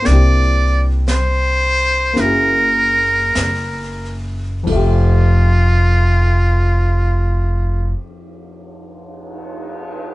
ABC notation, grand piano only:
X:1
M:4/4
L:1/8
Q:"Swing" 1/4=44
K:F
V:1 name="Grand piano"
[B,CDEG]4 [B,_D_F_G_A]4 | [F,,F,A,Ge]8 |]